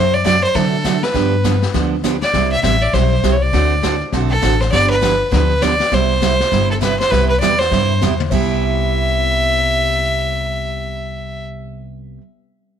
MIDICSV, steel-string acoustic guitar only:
0, 0, Header, 1, 2, 480
1, 0, Start_track
1, 0, Key_signature, 0, "major"
1, 0, Tempo, 298805
1, 1836, Time_signature, 4, 2, 24, 8
1, 20559, End_track
2, 0, Start_track
2, 0, Title_t, "Steel-string acoustic guitar"
2, 0, Program_c, 0, 25
2, 0, Note_on_c, 0, 48, 63
2, 0, Note_on_c, 0, 54, 62
2, 0, Note_on_c, 0, 57, 56
2, 0, Note_on_c, 0, 62, 64
2, 0, Note_on_c, 0, 66, 61
2, 238, Note_off_c, 0, 48, 0
2, 242, Note_off_c, 0, 54, 0
2, 243, Note_off_c, 0, 57, 0
2, 248, Note_off_c, 0, 62, 0
2, 250, Note_off_c, 0, 66, 0
2, 393, Note_on_c, 0, 48, 73
2, 395, Note_on_c, 0, 54, 69
2, 402, Note_on_c, 0, 57, 71
2, 412, Note_on_c, 0, 62, 84
2, 418, Note_on_c, 0, 66, 75
2, 574, Note_off_c, 0, 48, 0
2, 575, Note_off_c, 0, 54, 0
2, 578, Note_off_c, 0, 57, 0
2, 583, Note_off_c, 0, 62, 0
2, 586, Note_off_c, 0, 66, 0
2, 875, Note_on_c, 0, 48, 54
2, 884, Note_on_c, 0, 54, 56
2, 888, Note_on_c, 0, 57, 58
2, 901, Note_on_c, 0, 62, 60
2, 907, Note_on_c, 0, 66, 63
2, 1196, Note_off_c, 0, 48, 0
2, 1201, Note_off_c, 0, 54, 0
2, 1203, Note_off_c, 0, 57, 0
2, 1209, Note_off_c, 0, 62, 0
2, 1213, Note_off_c, 0, 66, 0
2, 1358, Note_on_c, 0, 48, 74
2, 1359, Note_on_c, 0, 54, 76
2, 1366, Note_on_c, 0, 57, 81
2, 1372, Note_on_c, 0, 62, 82
2, 1376, Note_on_c, 0, 66, 90
2, 1535, Note_off_c, 0, 48, 0
2, 1536, Note_off_c, 0, 54, 0
2, 1539, Note_off_c, 0, 57, 0
2, 1542, Note_off_c, 0, 62, 0
2, 1544, Note_off_c, 0, 66, 0
2, 1825, Note_on_c, 0, 50, 52
2, 1837, Note_on_c, 0, 53, 58
2, 1846, Note_on_c, 0, 59, 60
2, 1847, Note_on_c, 0, 62, 70
2, 1853, Note_on_c, 0, 67, 67
2, 2151, Note_off_c, 0, 50, 0
2, 2157, Note_off_c, 0, 53, 0
2, 2161, Note_off_c, 0, 59, 0
2, 2162, Note_off_c, 0, 62, 0
2, 2165, Note_off_c, 0, 67, 0
2, 2321, Note_on_c, 0, 50, 71
2, 2325, Note_on_c, 0, 53, 70
2, 2332, Note_on_c, 0, 59, 82
2, 2340, Note_on_c, 0, 62, 75
2, 2340, Note_on_c, 0, 67, 68
2, 2496, Note_off_c, 0, 50, 0
2, 2498, Note_off_c, 0, 53, 0
2, 2501, Note_off_c, 0, 59, 0
2, 2505, Note_off_c, 0, 62, 0
2, 2506, Note_off_c, 0, 67, 0
2, 2795, Note_on_c, 0, 50, 60
2, 2799, Note_on_c, 0, 53, 63
2, 2801, Note_on_c, 0, 59, 65
2, 2809, Note_on_c, 0, 62, 68
2, 2819, Note_on_c, 0, 67, 58
2, 3115, Note_off_c, 0, 50, 0
2, 3117, Note_off_c, 0, 53, 0
2, 3118, Note_off_c, 0, 59, 0
2, 3122, Note_off_c, 0, 62, 0
2, 3127, Note_off_c, 0, 67, 0
2, 3272, Note_on_c, 0, 50, 77
2, 3279, Note_on_c, 0, 53, 77
2, 3279, Note_on_c, 0, 59, 70
2, 3286, Note_on_c, 0, 62, 86
2, 3292, Note_on_c, 0, 67, 85
2, 3451, Note_off_c, 0, 50, 0
2, 3454, Note_off_c, 0, 53, 0
2, 3454, Note_off_c, 0, 59, 0
2, 3458, Note_off_c, 0, 62, 0
2, 3461, Note_off_c, 0, 67, 0
2, 3747, Note_on_c, 0, 48, 55
2, 3759, Note_on_c, 0, 55, 56
2, 3767, Note_on_c, 0, 60, 65
2, 3774, Note_on_c, 0, 64, 58
2, 3774, Note_on_c, 0, 67, 61
2, 4071, Note_off_c, 0, 48, 0
2, 4077, Note_off_c, 0, 55, 0
2, 4081, Note_off_c, 0, 60, 0
2, 4084, Note_off_c, 0, 64, 0
2, 4084, Note_off_c, 0, 67, 0
2, 4229, Note_on_c, 0, 48, 66
2, 4241, Note_on_c, 0, 55, 65
2, 4247, Note_on_c, 0, 60, 64
2, 4247, Note_on_c, 0, 64, 80
2, 4250, Note_on_c, 0, 67, 80
2, 4409, Note_off_c, 0, 48, 0
2, 4415, Note_off_c, 0, 55, 0
2, 4418, Note_off_c, 0, 60, 0
2, 4418, Note_off_c, 0, 64, 0
2, 4419, Note_off_c, 0, 67, 0
2, 4717, Note_on_c, 0, 48, 56
2, 4722, Note_on_c, 0, 55, 57
2, 4726, Note_on_c, 0, 60, 58
2, 4731, Note_on_c, 0, 64, 62
2, 4737, Note_on_c, 0, 67, 64
2, 5035, Note_off_c, 0, 48, 0
2, 5038, Note_off_c, 0, 55, 0
2, 5040, Note_off_c, 0, 60, 0
2, 5042, Note_off_c, 0, 64, 0
2, 5045, Note_off_c, 0, 67, 0
2, 5201, Note_on_c, 0, 48, 73
2, 5209, Note_on_c, 0, 55, 79
2, 5216, Note_on_c, 0, 60, 75
2, 5220, Note_on_c, 0, 64, 85
2, 5221, Note_on_c, 0, 67, 77
2, 5374, Note_off_c, 0, 48, 0
2, 5378, Note_off_c, 0, 55, 0
2, 5382, Note_off_c, 0, 60, 0
2, 5384, Note_off_c, 0, 64, 0
2, 5384, Note_off_c, 0, 67, 0
2, 5670, Note_on_c, 0, 50, 61
2, 5673, Note_on_c, 0, 57, 65
2, 5684, Note_on_c, 0, 60, 57
2, 5684, Note_on_c, 0, 66, 69
2, 5690, Note_on_c, 0, 69, 64
2, 5991, Note_off_c, 0, 50, 0
2, 5993, Note_off_c, 0, 57, 0
2, 5998, Note_off_c, 0, 60, 0
2, 5999, Note_off_c, 0, 66, 0
2, 6001, Note_off_c, 0, 69, 0
2, 6154, Note_on_c, 0, 50, 63
2, 6157, Note_on_c, 0, 57, 69
2, 6161, Note_on_c, 0, 60, 71
2, 6174, Note_on_c, 0, 66, 72
2, 6174, Note_on_c, 0, 69, 73
2, 6330, Note_off_c, 0, 50, 0
2, 6332, Note_off_c, 0, 57, 0
2, 6334, Note_off_c, 0, 60, 0
2, 6341, Note_off_c, 0, 66, 0
2, 6341, Note_off_c, 0, 69, 0
2, 6638, Note_on_c, 0, 50, 55
2, 6644, Note_on_c, 0, 57, 56
2, 6646, Note_on_c, 0, 60, 61
2, 6650, Note_on_c, 0, 66, 60
2, 6655, Note_on_c, 0, 69, 65
2, 6955, Note_off_c, 0, 50, 0
2, 6958, Note_off_c, 0, 57, 0
2, 6959, Note_off_c, 0, 60, 0
2, 6962, Note_off_c, 0, 66, 0
2, 6964, Note_off_c, 0, 69, 0
2, 7100, Note_on_c, 0, 50, 77
2, 7105, Note_on_c, 0, 57, 72
2, 7112, Note_on_c, 0, 60, 81
2, 7117, Note_on_c, 0, 66, 76
2, 7125, Note_on_c, 0, 69, 87
2, 7284, Note_off_c, 0, 50, 0
2, 7286, Note_off_c, 0, 57, 0
2, 7290, Note_off_c, 0, 60, 0
2, 7292, Note_off_c, 0, 66, 0
2, 7296, Note_off_c, 0, 69, 0
2, 7583, Note_on_c, 0, 50, 55
2, 7588, Note_on_c, 0, 53, 57
2, 7593, Note_on_c, 0, 59, 62
2, 7601, Note_on_c, 0, 62, 66
2, 7602, Note_on_c, 0, 67, 67
2, 7908, Note_off_c, 0, 50, 0
2, 7911, Note_off_c, 0, 53, 0
2, 7913, Note_off_c, 0, 59, 0
2, 7917, Note_off_c, 0, 62, 0
2, 7918, Note_off_c, 0, 67, 0
2, 8056, Note_on_c, 0, 50, 70
2, 8065, Note_on_c, 0, 53, 69
2, 8069, Note_on_c, 0, 59, 78
2, 8073, Note_on_c, 0, 62, 75
2, 8075, Note_on_c, 0, 67, 87
2, 8242, Note_off_c, 0, 50, 0
2, 8246, Note_off_c, 0, 53, 0
2, 8248, Note_off_c, 0, 59, 0
2, 8250, Note_off_c, 0, 62, 0
2, 8251, Note_off_c, 0, 67, 0
2, 8538, Note_on_c, 0, 50, 63
2, 8545, Note_on_c, 0, 53, 63
2, 8552, Note_on_c, 0, 59, 65
2, 8554, Note_on_c, 0, 62, 64
2, 8558, Note_on_c, 0, 67, 66
2, 8865, Note_off_c, 0, 50, 0
2, 8869, Note_off_c, 0, 53, 0
2, 8872, Note_off_c, 0, 59, 0
2, 8873, Note_off_c, 0, 62, 0
2, 8876, Note_off_c, 0, 67, 0
2, 9027, Note_on_c, 0, 50, 72
2, 9028, Note_on_c, 0, 53, 82
2, 9037, Note_on_c, 0, 59, 81
2, 9041, Note_on_c, 0, 62, 82
2, 9043, Note_on_c, 0, 67, 83
2, 9207, Note_off_c, 0, 50, 0
2, 9208, Note_off_c, 0, 53, 0
2, 9212, Note_off_c, 0, 59, 0
2, 9214, Note_off_c, 0, 62, 0
2, 9215, Note_off_c, 0, 67, 0
2, 9495, Note_on_c, 0, 48, 59
2, 9505, Note_on_c, 0, 55, 62
2, 9511, Note_on_c, 0, 59, 56
2, 9515, Note_on_c, 0, 64, 67
2, 9524, Note_on_c, 0, 67, 66
2, 9824, Note_off_c, 0, 48, 0
2, 9829, Note_off_c, 0, 55, 0
2, 9832, Note_off_c, 0, 59, 0
2, 9834, Note_off_c, 0, 64, 0
2, 9839, Note_off_c, 0, 67, 0
2, 9984, Note_on_c, 0, 48, 69
2, 9985, Note_on_c, 0, 55, 70
2, 9998, Note_on_c, 0, 59, 81
2, 10004, Note_on_c, 0, 64, 78
2, 10004, Note_on_c, 0, 67, 82
2, 10166, Note_off_c, 0, 48, 0
2, 10166, Note_off_c, 0, 55, 0
2, 10173, Note_off_c, 0, 59, 0
2, 10176, Note_off_c, 0, 64, 0
2, 10176, Note_off_c, 0, 67, 0
2, 10465, Note_on_c, 0, 48, 59
2, 10469, Note_on_c, 0, 55, 58
2, 10476, Note_on_c, 0, 59, 61
2, 10479, Note_on_c, 0, 64, 58
2, 10486, Note_on_c, 0, 67, 63
2, 10789, Note_off_c, 0, 48, 0
2, 10791, Note_off_c, 0, 55, 0
2, 10795, Note_off_c, 0, 59, 0
2, 10796, Note_off_c, 0, 64, 0
2, 10800, Note_off_c, 0, 67, 0
2, 10938, Note_on_c, 0, 48, 80
2, 10950, Note_on_c, 0, 55, 77
2, 10951, Note_on_c, 0, 59, 76
2, 10958, Note_on_c, 0, 64, 75
2, 10965, Note_on_c, 0, 67, 76
2, 11123, Note_off_c, 0, 48, 0
2, 11129, Note_off_c, 0, 55, 0
2, 11130, Note_off_c, 0, 59, 0
2, 11133, Note_off_c, 0, 64, 0
2, 11137, Note_off_c, 0, 67, 0
2, 11421, Note_on_c, 0, 48, 60
2, 11432, Note_on_c, 0, 55, 53
2, 11432, Note_on_c, 0, 59, 56
2, 11436, Note_on_c, 0, 64, 62
2, 11445, Note_on_c, 0, 67, 59
2, 11747, Note_off_c, 0, 48, 0
2, 11753, Note_off_c, 0, 55, 0
2, 11753, Note_off_c, 0, 59, 0
2, 11755, Note_off_c, 0, 64, 0
2, 11760, Note_off_c, 0, 67, 0
2, 11909, Note_on_c, 0, 48, 78
2, 11917, Note_on_c, 0, 55, 70
2, 11923, Note_on_c, 0, 59, 74
2, 11932, Note_on_c, 0, 64, 66
2, 11935, Note_on_c, 0, 67, 82
2, 12089, Note_off_c, 0, 48, 0
2, 12093, Note_off_c, 0, 55, 0
2, 12096, Note_off_c, 0, 59, 0
2, 12101, Note_off_c, 0, 64, 0
2, 12102, Note_off_c, 0, 67, 0
2, 12390, Note_on_c, 0, 48, 56
2, 12399, Note_on_c, 0, 55, 62
2, 12405, Note_on_c, 0, 59, 62
2, 12408, Note_on_c, 0, 64, 59
2, 12418, Note_on_c, 0, 67, 67
2, 12712, Note_off_c, 0, 48, 0
2, 12717, Note_off_c, 0, 55, 0
2, 12720, Note_off_c, 0, 59, 0
2, 12722, Note_off_c, 0, 64, 0
2, 12727, Note_off_c, 0, 67, 0
2, 12874, Note_on_c, 0, 48, 80
2, 12887, Note_on_c, 0, 55, 74
2, 12892, Note_on_c, 0, 59, 82
2, 12894, Note_on_c, 0, 64, 81
2, 12904, Note_on_c, 0, 67, 84
2, 13052, Note_off_c, 0, 48, 0
2, 13058, Note_off_c, 0, 55, 0
2, 13061, Note_off_c, 0, 59, 0
2, 13062, Note_off_c, 0, 64, 0
2, 13067, Note_off_c, 0, 67, 0
2, 13347, Note_on_c, 0, 48, 68
2, 13363, Note_on_c, 0, 55, 75
2, 13380, Note_on_c, 0, 59, 72
2, 13389, Note_on_c, 0, 64, 73
2, 13403, Note_on_c, 0, 67, 75
2, 19604, Note_off_c, 0, 48, 0
2, 19612, Note_off_c, 0, 55, 0
2, 19620, Note_off_c, 0, 59, 0
2, 19625, Note_off_c, 0, 64, 0
2, 19632, Note_off_c, 0, 67, 0
2, 20559, End_track
0, 0, End_of_file